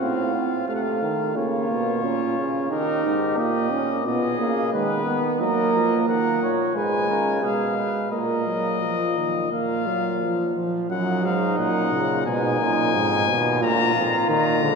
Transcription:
0.00 0.50 A2 medium
0.00 0.31 C4 medium
0.00 1.31 F4 medium
0.00 0.63 F5 medium
0.34 0.67 C4 medium
0.67 1.01 C3 medium
0.67 1.35 A3 medium
0.67 0.76 F5 medium
0.75 0.84 F#5 medium
0.82 1.36 F5 medium
1.02 1.38 D#3 medium
1.36 1.70 C#3 medium
1.36 2.05 A#3 medium
1.36 2.68 F4 medium
1.36 2.69 C#5 medium
1.70 2.05 B2 medium
2.03 2.37 A#2 medium
2.03 2.70 C#4 medium
2.38 2.71 C#3 medium
2.70 3.04 D#3 medium
2.70 3.39 D#4 loud
2.70 3.90 G4 medium
2.70 3.37 A#4 medium
3.05 3.40 G#2 medium
3.38 3.71 A#2 medium
3.38 3.73 A#3 medium
3.38 4.05 D#5 medium
3.72 4.07 A#2 medium
3.72 4.07 C#4 medium
4.05 4.39 B2 medium
4.05 4.39 B3 medium
4.05 4.73 G#4 medium
4.05 4.73 D#5 medium
4.39 4.73 C#3 medium
4.39 4.72 A#3 medium
4.73 5.42 D#3 medium
4.73 5.06 G#3 medium
4.73 5.40 B4 medium
5.06 5.40 B3 medium
5.40 5.74 F#3 medium
5.40 6.45 A#3 medium
5.40 6.07 A#4 medium
5.40 6.07 D#5 medium
5.75 6.07 F3 medium
6.08 6.41 D#3 medium
6.08 6.42 A#4 medium
6.08 6.51 F#5 medium
6.41 6.75 A#2 medium
6.41 6.77 C#5 medium
6.75 7.08 G#2 medium
6.75 7.39 G#3 medium
6.75 7.08 B4 medium
6.75 7.46 G#5 medium
7.09 7.44 C#3 medium
7.09 7.41 A#4 medium
7.42 7.88 B2 medium
7.42 8.10 G#3 medium
7.42 7.76 G#4 medium
7.42 8.12 F5 medium
7.77 8.11 B4 medium
8.11 9.47 A#2 medium
8.11 8.46 A#3 medium
8.11 9.20 A#4 medium
8.11 9.49 D#5 medium
8.47 8.83 F#3 medium
8.82 9.18 F3 medium
9.17 9.51 D#3 medium
9.50 10.53 A#2 medium
9.50 9.88 A#3 medium
9.50 10.51 F4 medium
9.50 10.53 F5 medium
9.87 10.23 F#3 medium
10.21 10.56 F3 medium
10.56 10.89 F3 medium
10.89 11.25 F#2 medium
10.89 11.54 F#3 medium
10.89 12.22 D#4 medium
10.89 11.27 F#5 medium
11.23 11.59 G#2 medium
11.23 11.58 F5 medium
11.57 11.93 F#2 medium
11.57 11.94 A#2 medium
11.57 12.25 F#5 medium
11.91 12.25 A#2 medium
11.91 12.28 C#3 medium
12.25 12.61 G#2 medium
12.25 12.60 B2 medium
12.25 13.59 D#4 medium
12.25 13.59 G#5 loud
12.59 12.93 F#2 medium
12.59 12.96 A#2 medium
12.93 13.27 F2 medium
12.93 13.30 G#2 medium
13.27 13.61 D#2 medium
13.27 13.63 B2 loud
13.60 13.95 D2 medium
13.60 13.95 A#2 loud
13.60 14.75 F4 loud
13.60 14.28 A#5 loud
13.95 14.28 F2 medium
13.95 14.28 A#2 medium
14.28 14.61 A#2 medium
14.28 14.64 D#3 loud
14.28 14.75 A#5 medium
14.62 14.75 G#2 medium
14.62 14.75 D3 loud

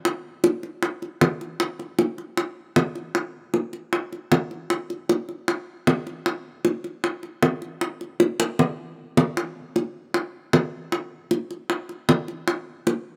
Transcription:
0.05 high bongo medium
0.44 high bongo medium
0.63 high bongo soft
0.83 high bongo medium
1.02 high bongo soft
1.21 high bongo medium
1.21 low bongo medium
1.41 high bongo soft
1.60 high bongo medium
1.79 high bongo soft
1.99 high bongo medium
2.18 high bongo soft
2.37 high bongo medium
2.76 high bongo medium
2.76 low bongo medium
2.95 high bongo soft
3.15 high bongo medium
3.54 high bongo medium
3.73 high bongo soft
3.93 high bongo medium
4.12 high bongo soft
4.32 high bongo medium
4.32 low bongo medium
4.51 high bongo soft
4.70 high bongo medium
4.90 high bongo soft
5.09 high bongo medium
5.29 high bongo soft
5.48 high bongo medium
5.87 high bongo medium
5.87 low bongo medium
6.07 high bongo soft
6.26 high bongo medium
6.65 high bongo medium
6.84 high bongo soft
7.04 high bongo medium
7.23 high bongo soft
7.43 high bongo medium
7.43 low bongo medium
7.62 high bongo soft
7.81 high bongo medium
8.01 high bongo soft
8.20 high bongo medium
8.40 high bongo medium
8.59 low bongo medium
9.17 low bongo loud
9.37 high bongo medium
9.76 high bongo medium
10.14 high bongo medium
10.53 high bongo medium
10.53 low bongo medium
10.92 high bongo medium
11.31 high bongo medium
11.51 high bongo soft
11.70 high bongo medium
11.89 high bongo soft
12.09 high bongo medium
12.09 low bongo medium
12.28 high bongo soft
12.48 high bongo medium
12.87 high bongo medium

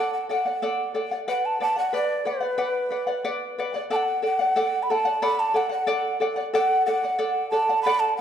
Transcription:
0.00 0.28 A4 medium
0.00 0.29 D5 medium
0.00 0.11 F#5 medium
0.00 0.29 F#5 medium
0.14 0.28 F#5 medium
0.29 0.45 A4 soft
0.29 0.46 D5 medium
0.29 0.91 F#5 medium
0.29 0.44 F#5 medium
0.46 0.62 D5 soft
0.46 0.62 F#5 soft
0.62 0.93 A4 medium
0.62 0.94 D5 medium
0.62 0.95 F#5 medium
0.94 1.11 A4 medium
0.94 1.11 D5 medium
0.94 1.10 F#5 medium
1.11 1.27 D5 soft
1.11 1.27 F#5 soft
1.28 1.59 B4 medium
1.28 1.60 D5 medium
1.28 1.61 F#5 medium
1.28 1.47 F#5 medium
1.45 1.61 A5 medium
1.60 1.77 B4 medium
1.60 1.77 D5 medium
1.60 1.75 F#5 medium
1.60 1.77 A5 medium
1.76 1.92 D5 soft
1.76 1.93 F#5 soft
1.76 1.93 F#5 medium
1.93 2.24 B4 medium
1.93 2.25 D5 medium
1.93 2.27 D5 medium
1.93 2.26 F#5 medium
2.25 2.42 B4 medium
2.25 3.58 B4 medium
2.25 2.41 D5 medium
2.25 2.39 F#5 medium
2.40 2.57 D5 soft
2.40 2.57 F#5 soft
2.58 2.89 B4 medium
2.58 2.90 D5 medium
2.58 2.90 F#5 medium
2.91 3.08 B4 medium
2.91 3.07 D5 medium
2.91 3.06 F#5 medium
3.07 3.23 D5 soft
3.07 3.24 F#5 medium
3.25 3.57 B4 medium
3.25 3.58 D5 medium
3.25 3.58 F#5 medium
3.58 3.74 B4 medium
3.58 3.75 D5 medium
3.58 3.73 F#5 medium
3.74 3.90 D5 soft
3.74 3.90 F#5 soft
3.90 4.21 A4 medium
3.90 4.22 D5 medium
3.90 4.22 F#5 medium
3.90 3.97 A5 medium
3.96 4.22 F#5 medium
4.22 4.39 A4 medium
4.22 4.39 D5 medium
4.22 4.38 F#5 medium
4.22 4.84 F#5 medium
4.39 4.55 D5 soft
4.39 4.56 F#5 medium
4.56 4.89 A4 medium
4.56 4.89 D5 medium
4.56 4.90 F#5 medium
4.83 4.92 B5 medium
4.90 5.06 A4 medium
4.90 5.05 D5 medium
4.90 5.04 F#5 medium
4.90 5.24 A5 medium
5.05 5.21 D5 soft
5.05 5.21 F#5 medium
5.22 5.53 A4 medium
5.22 5.53 D5 medium
5.22 5.54 F#5 medium
5.22 5.41 B5 loud
5.39 5.58 A5 medium
5.54 5.71 A4 medium
5.54 5.70 D5 medium
5.54 5.68 F#5 medium
5.54 5.72 F#5 medium
5.69 5.86 D5 soft
5.69 5.87 F#5 medium
5.69 6.18 F#5 medium
5.87 6.19 A4 medium
5.87 6.20 D5 medium
5.87 6.20 F#5 medium
6.20 6.37 A4 medium
6.20 6.36 D5 medium
6.20 6.35 F#5 medium
6.36 6.53 D5 soft
6.36 6.53 F#5 medium
6.54 6.85 A4 medium
6.54 6.86 D5 medium
6.54 6.85 F#5 medium
6.54 6.87 F#5 medium
6.86 7.03 A4 medium
6.86 7.03 D5 medium
6.86 7.49 F#5 medium
6.86 7.02 F#5 medium
7.04 7.18 D5 soft
7.04 7.18 F#5 soft
7.19 7.51 A4 medium
7.19 7.51 D5 medium
7.19 7.52 F#5 medium
7.51 7.69 A4 medium
7.51 7.69 D5 medium
7.51 7.68 F#5 medium
7.51 7.82 A5 medium
7.69 7.85 D5 soft
7.69 7.86 F#5 medium
7.83 8.18 A4 medium
7.83 8.19 D5 medium
7.83 8.01 B5 loud
7.87 8.20 F#5 medium
8.00 8.16 A5 medium
8.17 8.21 F#5 medium

